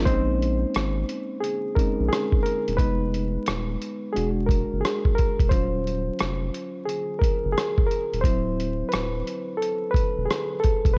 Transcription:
Already playing: A#3
0.06 A#1 G#3 C4 C#4 D#4 C5, kick, closed hi-hat
0.42 closed hi-hat
0.74 G#1, cross-stick, closed hi-hat
1.09 closed hi-hat
1.40 G#4, closed hi-hat
1.75 G#3 C4 C#4 D#4 A#4, kick, closed hi-hat
2.00 A#1
2.08 G#4
2.13 cross-stick, closed hi-hat
2.32 kick
2.43 A#4, closed hi-hat
2.68 D#1, closed hi-hat
2.77 F1 G#3 B3 D#4 B4, kick, closed hi-hat
3.14 closed hi-hat
3.46 D#1, cross-stick, closed hi-hat
3.82 closed hi-hat
4.13 E1 G#3 D4 F#4 G#4, closed hi-hat
4.46 A#4, kick
4.51 closed hi-hat
4.73 F#1
4.81 G#4
4.85 cross-stick, closed hi-hat
5.05 kick
5.15 A#4, closed hi-hat
5.19 kick
5.39 E1, kick, closed hi-hat
5.49 D#1 F#3 C#4 F4 C5, kick, closed hi-hat
5.87 closed hi-hat
6.19 F1, cross-stick, closed hi-hat
6.54 closed hi-hat
6.85 G#4, closed hi-hat
7.19 A#4, kick
7.24 closed hi-hat
7.45 F#1
7.53 G#4
7.58 cross-stick, closed hi-hat
7.78 kick
7.87 A#4
7.91 closed hi-hat
8.13 D#1, closed hi-hat
8.21 D1 F#3 C4 E4 C5, kick, closed hi-hat
8.60 closed hi-hat
8.89 B4, closed hi-hat
8.94 D1, cross-stick
9.27 closed hi-hat
9.57 A4
9.62 closed hi-hat
9.91 B4, kick
9.96 closed hi-hat
10.18 E1
10.25 G#4
10.30 cross-stick, closed hi-hat
10.60 A4, closed hi-hat
10.64 kick
10.85 E1, kick, closed hi-hat
10.93 B4

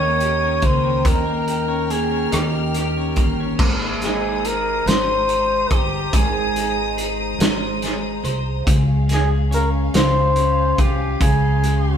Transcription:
Already playing: D#2 D#3 C#4 G4 A#4 C#5 G5 A#5 D#6
0.02 A#3
0.20 G4, closed hi-hat
0.43 C#4
0.62 C#2 A#3 C5, kick, closed hi-hat
0.85 C#4
1.04 D#2 D#3 A#4 F6, kick, closed hi-hat
1.26 A#3
1.48 closed hi-hat
1.68 C#4
1.90 A#3 G#4, closed hi-hat
2.11 C#4
2.31 D#2 D#3 G4, cross-stick, closed hi-hat
2.53 A#3
2.74 G4, cross-stick, closed hi-hat
2.97 C#4
3.16 G1 A#3, kick, closed hi-hat
3.40 C#4
3.58 G#1 G#3 C5 A#5 D#6, kick, crash
4.01 D#4 G#4, snare, closed hi-hat
4.45 G#4 A#4, closed hi-hat
4.86 G#1 C5, snare, closed hi-hat
5.29 closed hi-hat
5.70 G1 C5, kick, closed hi-hat
5.75 G4
6.13 G#1 G#3 G#4, kick, closed hi-hat
6.56 D#4, closed hi-hat
6.98 G#4, closed hi-hat
7.39 G#1 C5, snare, closed hi-hat
7.82 G#4, snare, closed hi-hat
8.23 C2 C5, closed hi-hat
8.66 C#2 C#4 F5, kick, closed hi-hat
9.09 G#3, snare, closed hi-hat
9.13 G#4
9.51 C#4 A#4, closed hi-hat
9.94 C#2 F4 C5, snare, closed hi-hat
10.36 C#4, closed hi-hat
10.78 C2 F4 G4, kick, closed hi-hat
11.20 C#2 C#3 G#4 C6, kick, closed hi-hat
11.63 G#3, closed hi-hat

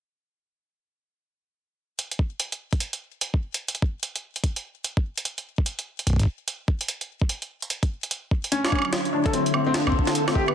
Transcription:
1.99 closed hi-hat
2.11 closed hi-hat
2.19 kick
2.40 closed hi-hat
2.52 closed hi-hat
2.73 kick, closed hi-hat
2.80 closed hi-hat
2.93 closed hi-hat
3.21 closed hi-hat
3.34 kick
3.54 closed hi-hat
3.68 closed hi-hat
3.75 closed hi-hat
3.82 kick
4.03 closed hi-hat
4.16 closed hi-hat
4.36 closed hi-hat
4.44 kick, closed hi-hat
4.56 closed hi-hat
4.84 closed hi-hat
4.97 kick
5.17 closed hi-hat
5.25 closed hi-hat
5.38 closed hi-hat
5.58 kick
5.66 closed hi-hat
5.79 closed hi-hat
5.99 closed hi-hat
6.07 kick, closed hi-hat
6.10 kick
6.13 kick
6.16 kick, closed hi-hat
6.19 kick
6.21 kick
6.23 kick
6.25 kick
6.48 closed hi-hat
6.68 kick
6.81 closed hi-hat
6.88 closed hi-hat
7.01 closed hi-hat
7.22 kick
7.29 closed hi-hat
7.42 closed hi-hat
7.62 closed hi-hat
7.70 closed hi-hat
7.83 kick, closed hi-hat
8.03 closed hi-hat
8.11 closed hi-hat
8.31 kick
8.44 closed hi-hat
8.52 D3 C#4, closed hi-hat
8.64 F#3 D4, snare, closed hi-hat, high woodblock
8.66 high woodblock
8.68 high woodblock
8.70 C#4, kick, high woodblock
8.72 high woodblock
8.75 high woodblock
8.79 high woodblock
8.82 high woodblock
8.85 high woodblock
8.90 E4, snare, closed hi-hat
9.05 closed hi-hat
9.13 D4
9.26 A4, kick, closed hi-hat
9.33 C4, closed hi-hat
9.44 A4, closed hi-hat
9.54 C4, high woodblock
9.66 C4
9.74 D4, snare, closed hi-hat
9.87 C4, kick, high woodblock
9.92 kick
9.99 kick
10.06 E4, snare, closed hi-hat
10.15 closed hi-hat
10.28 C4, snare, high woodblock
10.35 G4, kick
10.42 B4
10.48 B3, high woodblock

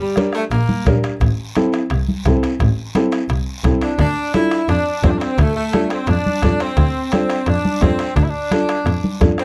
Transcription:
0.01 G3
0.16 D4 G4 A#4, bombo rim, high conga, high timbale, short guiro
0.33 A3, bombo rim, high timbale, short guiro
0.51 A#1 A#3, bombo rim, high timbale, long guiro
0.69 high conga
0.86 A#1 D4 G4 A#4, bombo low, bombo rim, high conga, high timbale, short guiro
1.03 bombo rim, high timbale, short guiro
1.21 A1, bombo low, bombo rim, high timbale, long guiro
1.55 C4 E4 A4, bombo rim, high conga, high timbale, short guiro
1.72 bombo rim, high timbale, short guiro
1.90 C2, bombo rim, high timbale, long guiro
2.08 high conga
2.25 C2 C4 E4 A4, bombo low, bombo rim, high conga, high timbale, low timbale, short guiro
2.43 bombo rim, high timbale, short guiro
2.60 A1, bombo low, bombo rim, high timbale, long guiro
2.95 C4 E4 A4, bombo rim, high conga, high timbale, short guiro
3.12 bombo rim, high timbale, short guiro
3.29 C2, bombo rim, high timbale, long guiro
3.64 C2 C4 E4 A4, bombo low, bombo rim, high conga, high timbale, short guiro
3.81 D4, bombo rim, high timbale, short guiro
3.99 D2 D4, bombo low, bombo rim, high timbale, long guiro
4.34 D4 E4 F4 A4, bombo rim, high conga, high timbale, short guiro
4.51 bombo rim, high timbale, short guiro
4.68 F2 D4, bombo rim, high timbale, long guiro
5.03 F2 C4 D4 F4 A4, bombo low, bombo rim, high conga, high timbale, low timbale, short guiro
5.10 D4
5.19 C4, bombo rim, high timbale, short guiro
5.38 D2 A3, bombo low, bombo rim, high timbale, long guiro
5.57 A3
5.72 D4 F4 A4, bombo rim, high conga, high timbale, short guiro
5.90 C4, bombo rim, high timbale, short guiro
6.06 F2 D4, bombo rim, high timbale, long guiro
6.26 high conga
6.42 F2 D4 F4 A4, bombo low, bombo rim, high conga, high timbale, short guiro
6.60 C4, bombo rim, high timbale, short guiro
6.77 D2, bombo low, bombo rim, high timbale, long guiro
7.12 C4 D4 F4 A4, bombo rim, high conga, high timbale, short guiro
7.29 bombo rim, high timbale, short guiro
7.46 F2 D4, bombo rim, high timbale, long guiro
7.65 high conga
7.81 F2 C4 D4 F4 A4, bombo low, bombo rim, high conga, high timbale, low timbale, short guiro
7.99 bombo rim, high timbale, short guiro
8.16 D2 D4, bombo low, bombo rim, high timbale, long guiro
8.23 E4
8.30 D4
8.51 D4 F4 A4, bombo rim, high conga, high timbale, short guiro
8.69 bombo rim, high timbale, short guiro
8.86 F2, bombo rim, high timbale, long guiro
9.04 high conga
9.20 F2 D4 F4 A4, bombo low, bombo rim, high conga, high timbale, short guiro
9.38 C4, bombo rim, high timbale, short guiro

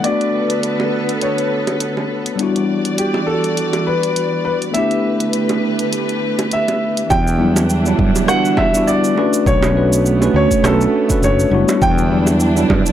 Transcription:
0.00 A3 B3 D5, closed hi-hat
0.05 D3 B3 D4 F#4 A4 B4
0.21 closed hi-hat
0.50 closed hi-hat
0.63 closed hi-hat
0.80 high bongo
1.09 closed hi-hat
1.21 C#5, closed hi-hat
1.38 closed hi-hat
1.67 closed hi-hat, high bongo
1.80 closed hi-hat
1.97 high bongo
2.26 closed hi-hat
2.36 G3 B3 D4, closed hi-hat
2.40 E3 G3 E4 F#4 D5
2.56 closed hi-hat
2.85 closed hi-hat
2.98 G4, closed hi-hat
3.14 high bongo
3.26 A4
3.44 closed hi-hat
3.57 closed hi-hat
3.73 closed hi-hat, high bongo
3.87 B4
4.03 closed hi-hat
4.16 closed hi-hat
4.45 B4
4.62 closed hi-hat
4.71 A3 B3 D4 E5, closed hi-hat
4.76 D3 A3 E4 G4 B4
4.91 closed hi-hat
5.20 closed hi-hat
5.33 closed hi-hat
5.49 closed hi-hat, high bongo
5.79 closed hi-hat
5.93 closed hi-hat
6.09 closed hi-hat
6.39 closed hi-hat, high bongo
6.51 E5, closed hi-hat
6.68 closed hi-hat, high bongo
6.97 closed hi-hat
7.10 E2 D3 E3 D4 E4 G5, kick, high bongo, cabasa
7.27 cabasa
7.38 F#3 G3 B3 D4 E4
7.56 high bongo, cabasa
7.70 cabasa
7.85 F#3 G3 B3 D4 E4, cabasa
7.99 G2, kick
8.15 high bongo, cabasa
8.27 G3 B3 D4 E4 F#4 F#5, cross-stick, cabasa
8.45 cabasa
8.57 E5, kick, high bongo
8.73 G3 B3 D4 E4 F#4, cabasa
8.87 D5, cabasa
9.04 cabasa
9.15 A3 C#4 D4 F#4 B4, high bongo
9.33 cabasa
9.46 B1 A3 B3 C#5, kick, cabasa
9.63 high bongo, cabasa
9.73 A3 C#4 D4 F#4 B4
9.93 cabasa
10.06 cabasa
10.20 A3 C#4 D4 F#4 B4, high bongo, cabasa
10.34 D2 C#5
10.51 kick, cabasa
10.62 B1 A3 C#4 D4 F#4 A4 B4, cross-stick, high bongo, cabasa
10.81 cabasa
11.08 A3 C#4 D4 F#4 B4, kick, cabasa
11.22 F#1 C#5, high bongo, cabasa
11.39 cabasa
11.50 F#1 G3 B3 D4 E4 F#4
11.68 high bongo, cabasa
11.82 E2 D3 E3 D4 E4 G5, kick, cabasa
11.98 cabasa
12.10 F#3 G3 B3 D4 E4
12.27 high bongo, cabasa
12.40 cabasa
12.55 F#3 G3 B3 D4 E4, cabasa
12.70 G2, kick, high bongo
12.86 cabasa

